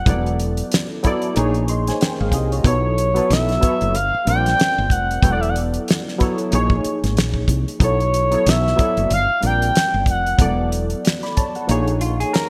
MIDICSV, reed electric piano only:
0, 0, Header, 1, 2, 480
1, 0, Start_track
1, 0, Tempo, 645161
1, 48, Time_signature, 4, 2, 24, 8
1, 9293, End_track
2, 0, Start_track
2, 0, Title_t, "Reed electric piano"
2, 0, Program_c, 0, 4
2, 0, Control_c, 0, 64, 127
2, 40, Note_on_c, 0, 54, 85
2, 48, Note_on_c, 0, 59, 79
2, 54, Note_on_c, 0, 64, 79
2, 58, Control_c, 0, 64, 0
2, 62, Note_on_c, 0, 69, 75
2, 71, Note_on_c, 0, 74, 87
2, 178, Control_c, 0, 64, 127
2, 612, Note_off_c, 0, 54, 0
2, 615, Note_off_c, 0, 59, 0
2, 619, Note_off_c, 0, 64, 0
2, 623, Note_off_c, 0, 69, 0
2, 627, Note_off_c, 0, 74, 0
2, 766, Note_on_c, 0, 54, 85
2, 773, Note_on_c, 0, 59, 80
2, 781, Note_on_c, 0, 64, 84
2, 788, Note_on_c, 0, 69, 83
2, 797, Note_on_c, 0, 74, 97
2, 1002, Note_on_c, 0, 53, 91
2, 1007, Note_off_c, 0, 54, 0
2, 1008, Note_on_c, 0, 58, 83
2, 1010, Note_off_c, 0, 59, 0
2, 1014, Note_off_c, 0, 64, 0
2, 1015, Control_c, 0, 64, 0
2, 1016, Note_on_c, 0, 63, 85
2, 1018, Note_off_c, 0, 69, 0
2, 1022, Note_off_c, 0, 74, 0
2, 1024, Note_on_c, 0, 68, 87
2, 1034, Note_on_c, 0, 73, 98
2, 1140, Control_c, 0, 64, 127
2, 1256, Note_off_c, 0, 68, 0
2, 1259, Note_on_c, 0, 84, 61
2, 1261, Note_off_c, 0, 73, 0
2, 1265, Note_on_c, 0, 75, 50
2, 1386, Note_off_c, 0, 84, 0
2, 1389, Note_off_c, 0, 75, 0
2, 1401, Note_on_c, 0, 80, 63
2, 1405, Note_on_c, 0, 72, 57
2, 1490, Note_off_c, 0, 80, 0
2, 1492, Note_off_c, 0, 72, 0
2, 1501, Note_on_c, 0, 79, 67
2, 1504, Note_on_c, 0, 70, 57
2, 1627, Note_off_c, 0, 79, 0
2, 1629, Note_off_c, 0, 70, 0
2, 1640, Note_on_c, 0, 77, 69
2, 1645, Note_on_c, 0, 68, 65
2, 1729, Note_off_c, 0, 77, 0
2, 1732, Note_off_c, 0, 68, 0
2, 1739, Note_on_c, 0, 75, 71
2, 1741, Note_on_c, 0, 67, 56
2, 1780, Note_off_c, 0, 53, 0
2, 1784, Note_off_c, 0, 58, 0
2, 1788, Note_off_c, 0, 63, 0
2, 1866, Note_off_c, 0, 75, 0
2, 1867, Note_off_c, 0, 67, 0
2, 1874, Note_on_c, 0, 73, 58
2, 1878, Note_on_c, 0, 65, 48
2, 1959, Note_on_c, 0, 54, 86
2, 1965, Note_on_c, 0, 59, 84
2, 1972, Note_on_c, 0, 64, 76
2, 1977, Control_c, 0, 64, 0
2, 1978, Note_off_c, 0, 73, 0
2, 1981, Note_on_c, 0, 69, 77
2, 1987, Note_on_c, 0, 73, 94
2, 2091, Control_c, 0, 64, 127
2, 2101, Note_off_c, 0, 65, 0
2, 2247, Note_off_c, 0, 54, 0
2, 2250, Note_off_c, 0, 59, 0
2, 2254, Note_off_c, 0, 64, 0
2, 2258, Note_off_c, 0, 69, 0
2, 2261, Note_off_c, 0, 73, 0
2, 2339, Note_on_c, 0, 54, 73
2, 2342, Note_on_c, 0, 59, 65
2, 2353, Note_on_c, 0, 64, 65
2, 2358, Note_on_c, 0, 69, 67
2, 2367, Note_on_c, 0, 71, 76
2, 2614, Note_off_c, 0, 54, 0
2, 2616, Note_off_c, 0, 59, 0
2, 2621, Note_off_c, 0, 64, 0
2, 2624, Note_off_c, 0, 69, 0
2, 2628, Note_off_c, 0, 71, 0
2, 2679, Note_on_c, 0, 54, 79
2, 2687, Note_on_c, 0, 59, 72
2, 2694, Note_on_c, 0, 64, 64
2, 2700, Note_on_c, 0, 69, 62
2, 2709, Note_on_c, 0, 73, 82
2, 2923, Note_off_c, 0, 54, 0
2, 2927, Note_off_c, 0, 59, 0
2, 2931, Note_off_c, 0, 64, 0
2, 2934, Note_off_c, 0, 69, 0
2, 2937, Control_c, 0, 64, 0
2, 2938, Note_off_c, 0, 73, 0
2, 3086, Control_c, 0, 64, 127
2, 3162, Note_on_c, 0, 55, 68
2, 3169, Note_on_c, 0, 60, 62
2, 3178, Note_on_c, 0, 65, 62
2, 3187, Note_on_c, 0, 70, 62
2, 3192, Note_on_c, 0, 72, 59
2, 3236, Note_off_c, 0, 72, 0
2, 3240, Note_on_c, 0, 74, 73
2, 3732, Note_off_c, 0, 55, 0
2, 3736, Note_off_c, 0, 60, 0
2, 3740, Note_off_c, 0, 65, 0
2, 3745, Note_off_c, 0, 70, 0
2, 3772, Note_off_c, 0, 74, 0
2, 3882, Note_on_c, 0, 54, 82
2, 3891, Note_on_c, 0, 59, 79
2, 3896, Note_on_c, 0, 64, 78
2, 3898, Control_c, 0, 64, 0
2, 3905, Note_on_c, 0, 69, 80
2, 3911, Note_on_c, 0, 73, 72
2, 3956, Note_off_c, 0, 73, 0
2, 3961, Note_on_c, 0, 74, 96
2, 4047, Control_c, 0, 64, 127
2, 4452, Note_off_c, 0, 54, 0
2, 4457, Note_off_c, 0, 59, 0
2, 4459, Note_off_c, 0, 64, 0
2, 4464, Note_off_c, 0, 69, 0
2, 4492, Note_off_c, 0, 74, 0
2, 4601, Note_on_c, 0, 54, 86
2, 4606, Note_on_c, 0, 59, 75
2, 4614, Note_on_c, 0, 64, 82
2, 4624, Note_on_c, 0, 69, 72
2, 4629, Note_on_c, 0, 73, 94
2, 4842, Note_on_c, 0, 53, 93
2, 4844, Note_off_c, 0, 54, 0
2, 4847, Note_off_c, 0, 59, 0
2, 4851, Note_off_c, 0, 64, 0
2, 4851, Note_on_c, 0, 58, 79
2, 4856, Note_off_c, 0, 69, 0
2, 4857, Control_c, 0, 64, 0
2, 4858, Note_off_c, 0, 73, 0
2, 4858, Note_on_c, 0, 63, 81
2, 4865, Note_on_c, 0, 68, 81
2, 4875, Note_on_c, 0, 73, 100
2, 4968, Control_c, 0, 64, 127
2, 5621, Note_off_c, 0, 53, 0
2, 5625, Note_off_c, 0, 58, 0
2, 5629, Note_off_c, 0, 63, 0
2, 5632, Note_off_c, 0, 68, 0
2, 5637, Note_off_c, 0, 73, 0
2, 5802, Note_on_c, 0, 54, 87
2, 5809, Note_on_c, 0, 59, 76
2, 5816, Control_c, 0, 64, 0
2, 5816, Note_on_c, 0, 64, 72
2, 5826, Note_on_c, 0, 69, 75
2, 5833, Note_on_c, 0, 73, 93
2, 5956, Control_c, 0, 64, 127
2, 6088, Note_off_c, 0, 54, 0
2, 6092, Note_off_c, 0, 59, 0
2, 6095, Note_off_c, 0, 64, 0
2, 6101, Note_off_c, 0, 69, 0
2, 6104, Note_off_c, 0, 73, 0
2, 6182, Note_on_c, 0, 54, 69
2, 6187, Note_on_c, 0, 59, 65
2, 6197, Note_on_c, 0, 64, 66
2, 6204, Note_on_c, 0, 69, 59
2, 6209, Note_on_c, 0, 73, 81
2, 6456, Note_off_c, 0, 54, 0
2, 6458, Note_off_c, 0, 59, 0
2, 6464, Note_off_c, 0, 64, 0
2, 6467, Note_off_c, 0, 69, 0
2, 6470, Note_off_c, 0, 73, 0
2, 6518, Note_on_c, 0, 54, 71
2, 6524, Note_on_c, 0, 59, 66
2, 6532, Note_on_c, 0, 64, 64
2, 6539, Note_on_c, 0, 69, 61
2, 6548, Note_on_c, 0, 74, 79
2, 6763, Note_off_c, 0, 54, 0
2, 6766, Note_off_c, 0, 59, 0
2, 6770, Note_off_c, 0, 64, 0
2, 6773, Note_off_c, 0, 69, 0
2, 6776, Control_c, 0, 64, 0
2, 6778, Note_off_c, 0, 74, 0
2, 6901, Control_c, 0, 64, 127
2, 6997, Note_on_c, 0, 55, 65
2, 7005, Note_on_c, 0, 60, 56
2, 7015, Note_on_c, 0, 65, 59
2, 7020, Note_on_c, 0, 70, 62
2, 7029, Note_on_c, 0, 74, 70
2, 7570, Note_off_c, 0, 55, 0
2, 7574, Note_off_c, 0, 60, 0
2, 7579, Note_off_c, 0, 65, 0
2, 7581, Note_off_c, 0, 70, 0
2, 7586, Note_off_c, 0, 74, 0
2, 7720, Note_on_c, 0, 54, 78
2, 7727, Note_on_c, 0, 59, 73
2, 7736, Note_on_c, 0, 64, 77
2, 7738, Control_c, 0, 64, 0
2, 7743, Note_on_c, 0, 69, 78
2, 7750, Note_on_c, 0, 74, 98
2, 7852, Control_c, 0, 64, 127
2, 8215, Note_off_c, 0, 69, 0
2, 8219, Note_off_c, 0, 74, 0
2, 8291, Note_off_c, 0, 54, 0
2, 8295, Note_off_c, 0, 59, 0
2, 8300, Note_off_c, 0, 64, 0
2, 8356, Note_on_c, 0, 83, 58
2, 8358, Note_on_c, 0, 74, 52
2, 8447, Note_off_c, 0, 83, 0
2, 8448, Note_off_c, 0, 74, 0
2, 8458, Note_on_c, 0, 81, 69
2, 8461, Note_on_c, 0, 73, 58
2, 8586, Note_off_c, 0, 81, 0
2, 8587, Note_off_c, 0, 73, 0
2, 8599, Note_on_c, 0, 78, 56
2, 8604, Note_on_c, 0, 69, 51
2, 8684, Note_on_c, 0, 53, 90
2, 8691, Note_on_c, 0, 58, 81
2, 8696, Control_c, 0, 64, 0
2, 8699, Note_on_c, 0, 63, 81
2, 8709, Note_on_c, 0, 68, 84
2, 8714, Note_on_c, 0, 73, 105
2, 8814, Control_c, 0, 64, 127
2, 8821, Note_off_c, 0, 78, 0
2, 8824, Note_off_c, 0, 69, 0
2, 9293, Note_off_c, 0, 53, 0
2, 9293, Note_off_c, 0, 58, 0
2, 9293, Note_off_c, 0, 63, 0
2, 9293, Note_off_c, 0, 68, 0
2, 9293, Note_off_c, 0, 73, 0
2, 9293, End_track
0, 0, End_of_file